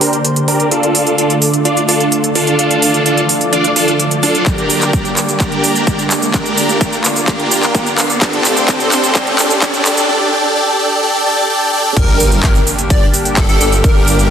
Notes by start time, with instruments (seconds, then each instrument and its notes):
Already playing: analog synth pad D3 A#3 G4 C5, riser
0.01 supersaw synth D4 G4 A#4, open hi-hat
0.13 closed hi-hat
0.25 closed hi-hat
0.36 closed hi-hat
0.48 supersaw synth D4 G4 A#4, open hi-hat
0.60 closed hi-hat
0.71 analog synth pad A3 F4 D5, supersaw synth D4 F4 A4, closed hi-hat
0.83 closed hi-hat
0.95 open hi-hat
1.07 closed hi-hat
1.18 supersaw synth D4 F4 A4, closed hi-hat
1.30 closed hi-hat
1.42 open hi-hat
1.54 closed hi-hat
1.65 supersaw synth D4 F4 D5, closed hi-hat
1.77 closed hi-hat
1.89 supersaw synth D4 F4 A4, open hi-hat
2.00 closed hi-hat
2.12 closed hi-hat
2.24 closed hi-hat
2.35 supersaw synth D4 F4 A4, open hi-hat
2.47 closed hi-hat
2.59 supersaw synth D4 F4 A4, closed hi-hat
2.71 closed hi-hat
2.82 open hi-hat
2.94 closed hi-hat
3.06 supersaw synth D4 F4 A4, closed hi-hat
3.17 closed hi-hat
3.29 open hi-hat
3.41 closed hi-hat
3.53 supersaw synth D4 F4 D5, closed hi-hat
3.64 closed hi-hat
3.76 supersaw synth D4 F4 A4, open hi-hat
3.88 closed hi-hat
4.00 closed hi-hat
4.11 closed hi-hat
4.23 supersaw synth D4 F4 A4, open hi-hat
4.35 closed hi-hat
4.46 analog synth pad D3 A#3 G4, supersaw synth D4 G4 A#4, kick, clap, closed hi-hat, shaker
4.58 closed hi-hat
4.70 open hi-hat, shaker
4.82 clap, closed hi-hat, shaker
4.93 supersaw synth D4 G4 A#4, kick, closed hi-hat, shaker
5.05 closed hi-hat, shaker
5.17 clap, open hi-hat, shaker
5.29 closed hi-hat, shaker
5.40 supersaw synth D4 G4 A#4, kick, clap, closed hi-hat, shaker
5.52 closed hi-hat
5.64 open hi-hat, shaker
5.75 closed hi-hat, shaker
5.87 supersaw synth D4 G4 A#4, kick, closed hi-hat, shaker
5.99 closed hi-hat, shaker
6.11 clap, open hi-hat, shaker
6.22 closed hi-hat, shaker
6.34 supersaw synth D4 G4 A#4, analog synth pad F4, kick, clap, closed hi-hat, shaker
6.46 closed hi-hat, shaker
6.57 open hi-hat, shaker
6.69 closed hi-hat, shaker
6.81 supersaw synth D4 G4 A#4, kick, closed hi-hat, shaker
6.93 closed hi-hat, shaker
7.04 clap, open hi-hat, shaker
7.16 closed hi-hat, shaker
7.28 supersaw synth D4 G4 A#4, kick, clap, closed hi-hat, shaker
7.40 closed hi-hat
7.51 open hi-hat, shaker
7.63 clap, closed hi-hat, shaker
7.74 supersaw synth D4 G4 A#4, kick, closed hi-hat, shaker
7.86 closed hi-hat, shaker
7.98 clap, open hi-hat, shaker
8.10 closed hi-hat, shaker
8.21 analog synth pad C3 A3 C5, supersaw synth D4 G4 A4, kick, clap, closed hi-hat, shaker
8.33 closed hi-hat
8.45 clap, open hi-hat, shaker
8.57 closed hi-hat, shaker
8.68 supersaw synth D4 G4 A4, kick, clap, closed hi-hat, shaker
8.80 closed hi-hat, shaker
8.92 clap, open hi-hat, shaker
9.04 closed hi-hat, shaker
9.15 supersaw synth D4 G4 A4, kick, clap, closed hi-hat, shaker
9.27 closed hi-hat
9.39 clap, open hi-hat, shaker
9.50 closed hi-hat, shaker
9.62 supersaw synth D4 G4 A4, kick, clap, closed hi-hat, shaker
9.74 closed hi-hat, shaker
9.86 clap, open hi-hat, shaker
9.97 closed hi-hat, shaker
10.09 supersaw synth D4 G4 A4
10.32 supersaw synth D4 G4 A4
10.56 supersaw synth D4 G4 A4
10.79 supersaw synth D4 G4 A4
11.03 supersaw synth D4 G4 A4
11.26 supersaw synth D4 G4 A4
11.50 supersaw synth D4 G4 A4
11.73 supersaw synth D4 G4 A4
11.96 detuned saw bass G1, analog synth pad D3 G3 A#3 G4, supersaw synth D4 G4 A#4, digital synth lead A#4, kick, closed hi-hat, crash, impact, shaker
12.20 open hi-hat, shaker
12.32 closed hi-hat, shaker
12.43 detuned saw bass G1, supersaw synth D4 G4 A#4, digital synth lead A#4, kick, clap, closed hi-hat, shaker
12.55 closed hi-hat, shaker
12.67 open hi-hat, shaker
12.79 closed hi-hat, shaker
12.90 detuned saw bass G1, supersaw synth D4 G4 D5, digital synth lead D5, kick, closed hi-hat, shaker
13.14 open hi-hat, shaker
13.25 closed hi-hat, shaker
13.37 detuned saw bass G1, supersaw synth D4 G4 A4, digital synth lead A4, kick, clap, closed hi-hat, shaker
13.49 detuned saw bass G1, supersaw synth D4 G4 A4, digital synth lead A4, closed hi-hat, shaker
13.61 detuned saw bass G1, supersaw synth D4 G4 A4, digital synth lead A4, open hi-hat, shaker
13.72 closed hi-hat, shaker
13.84 detuned saw bass G1, supersaw synth D4 G4 A#4, digital synth lead A#4, kick, closed hi-hat, shaker
14.07 open hi-hat, shaker
14.19 closed hi-hat, shaker